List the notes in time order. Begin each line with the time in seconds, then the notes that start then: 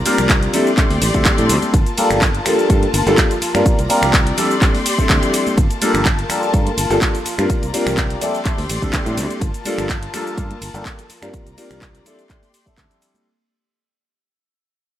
Already playing: F4 D5 A#5
0.05 G3 C4 D4 F4 A#4, open hi-hat, ride, high conga, shaker
0.18 C2, finger snap, closed hi-hat, low conga, shaker
0.29 kick, clap, closed hi-hat, shaker
0.43 closed hi-hat, shaker
0.54 G3 C4 D4 E4 G4 A4 D5 C6, open hi-hat, ride, high conga, low conga, shaker
0.67 shaker
0.77 G3 C4 D4 E4 A4, kick, clap, closed hi-hat, shaker
0.90 D2, open hi-hat, high conga, shaker
1.02 A1, open hi-hat, ride, shaker
1.14 D2 G3 C4 D4 E4 A4, kick, closed hi-hat, shaker
1.25 kick, clap, closed hi-hat, high conga, shaker
1.38 A2, closed hi-hat, low conga, shaker
1.49 D2, open hi-hat, ride, shaker
1.62 closed hi-hat, high conga, shaker
1.74 G1 F4 A#4 A5, kick, closed hi-hat, shaker
1.86 closed hi-hat, shaker
1.98 G3 A#3 D4 F4 A4, open hi-hat, ride, high conga, shaker
2.10 G1, finger snap, closed hi-hat, low conga, shaker
2.21 kick, clap, closed hi-hat, shaker
2.35 closed hi-hat, shaker
2.45 G3 A#3 D4 F4 A4, finger snap, open hi-hat, ride, high conga, low conga, shaker
2.59 shaker
2.69 G2 G3 A#3 D4 F4 A4, kick, closed hi-hat, shaker
2.82 closed hi-hat, high conga, shaker
2.94 G1, open hi-hat, ride, shaker
3.06 G1 G3 A#3 D4 F4 A4, closed hi-hat, shaker
3.18 kick, clap, closed hi-hat, high conga, shaker
3.30 closed hi-hat, low conga, shaker
3.42 muted fingered electric bass stroke, open hi-hat, ride, shaker
3.55 G2 G3 C4 D4 F4 A#4, finger snap, closed hi-hat, high conga, shaker
3.66 D5 A#5, muted fingered electric bass stroke, kick, closed hi-hat, shaker
3.78 C2, closed hi-hat, shaker
3.89 G3 C4 D4 F4 A#4, open hi-hat, ride, high conga, shaker
4.02 C2, finger snap, closed hi-hat, low conga, shaker
4.13 kick, clap, closed hi-hat, shaker
4.26 closed hi-hat, shaker
4.37 G3 C4 D4 E4 G4 A4 C6, open hi-hat, ride, high conga, low conga, shaker
4.50 shaker
4.62 C4 D4 E4 A4, kick, clap, closed hi-hat, shaker
4.75 open hi-hat, high conga, shaker
4.86 open hi-hat, ride, shaker
4.98 G3 C4 D4 E4 A4, muted fingered electric bass stroke, kick, closed hi-hat, shaker
5.09 D2, kick, clap, closed hi-hat, high conga, shaker
5.23 closed hi-hat, low conga, shaker
5.34 open hi-hat, ride, shaker
5.47 closed hi-hat, high conga, shaker
5.57 G1 F4 A#4 A5, kick, closed hi-hat, shaker
5.71 closed hi-hat, shaker
5.82 G3 A#3 D4 F4 A4, open hi-hat, ride, high conga, shaker
5.94 G1, finger snap, closed hi-hat, low conga, shaker
6.05 kick, clap, closed hi-hat, shaker
6.19 closed hi-hat, shaker
6.29 G3 A#3 D4 F4 A4, finger snap, open hi-hat, ride, high conga, low conga, shaker
6.42 shaker
6.54 G2 A#3 D4 F4 A4, kick, closed hi-hat, shaker
6.67 closed hi-hat, high conga, shaker
6.77 G1, open hi-hat, ride, shaker
6.90 G1 G3 A#3 D4 F4 A4, closed hi-hat, shaker
7.01 kick, clap, closed hi-hat, high conga, shaker
7.15 closed hi-hat, low conga, shaker
7.26 muted fingered electric bass stroke, open hi-hat, ride, shaker
7.38 G2 G3 C4 D4 F4 A#4, finger snap, closed hi-hat, high conga, shaker
7.50 D5 A#5, muted fingered electric bass stroke, kick, closed hi-hat, shaker
7.62 C2, closed hi-hat, shaker
7.73 G3 C4 D4 F4 A#4, open hi-hat, ride, high conga, shaker
7.86 C2, finger snap, closed hi-hat, low conga, shaker
7.97 kick, clap, closed hi-hat, shaker
8.10 closed hi-hat, shaker
8.21 G3 C4 D4 E4 G4 A4 C6, open hi-hat, ride, high conga, low conga, shaker
8.35 shaker
8.45 G3 C4 D4 E4 A4, kick, clap, closed hi-hat, shaker
8.58 D2, open hi-hat, high conga, shaker
8.69 A1, open hi-hat, ride, shaker
8.82 D2 G3 C4 D4 E4 A4, kick, closed hi-hat, shaker
8.93 kick, clap, closed hi-hat, high conga, shaker
9.06 A2, closed hi-hat, low conga, shaker
9.17 D2, open hi-hat, ride, shaker
9.30 closed hi-hat, high conga, shaker
9.41 G1 F4 A#4 A5, kick, closed hi-hat, shaker
9.54 closed hi-hat, shaker
9.65 G3 A#3 D4 F4 A4, open hi-hat, ride, high conga, shaker
9.78 G1, finger snap, closed hi-hat, low conga, shaker
9.89 kick, clap, closed hi-hat, shaker
10.02 closed hi-hat, shaker
10.13 G3 A#3 D4 F4 A4, finger snap, open hi-hat, ride, high conga, low conga, shaker
10.27 shaker
10.37 G2 G3 A#3 D4 A4, kick, closed hi-hat, shaker
10.50 closed hi-hat, high conga, shaker
10.61 G1, open hi-hat, ride, shaker
10.74 G1 G3 A#3 D4 F4 A4, closed hi-hat, shaker
10.86 kick, clap, closed hi-hat, shaker
10.98 closed hi-hat, low conga, shaker
11.09 muted fingered electric bass stroke, open hi-hat, ride, shaker
11.22 G2 G3 C4 D4 F4 A#4, finger snap, closed hi-hat, high conga, shaker
11.34 F4 D5 A#5, kick, closed hi-hat, shaker
11.46 C2, closed hi-hat, shaker
11.57 G3 C4 D4 F4 A#4, open hi-hat, ride, high conga, shaker
11.70 C2, finger snap, closed hi-hat, low conga, shaker
11.82 kick, clap, closed hi-hat, shaker
11.94 closed hi-hat, shaker
12.04 G3 C4 D4 E4 G4 A4 C6, open hi-hat, ride, high conga, low conga, shaker
12.18 closed hi-hat, shaker
12.29 G3 C4 D4 E4 A4, kick, clap, closed hi-hat, shaker
12.42 open hi-hat, high conga, shaker
12.53 open hi-hat, ride, shaker
12.66 G3 C4 D4 E4 A4, kick, closed hi-hat, shaker
12.78 D2, kick, clap, closed hi-hat, high conga, shaker
12.90 closed hi-hat, low conga, shaker
13.02 open hi-hat, ride, shaker
13.14 closed hi-hat, high conga, shaker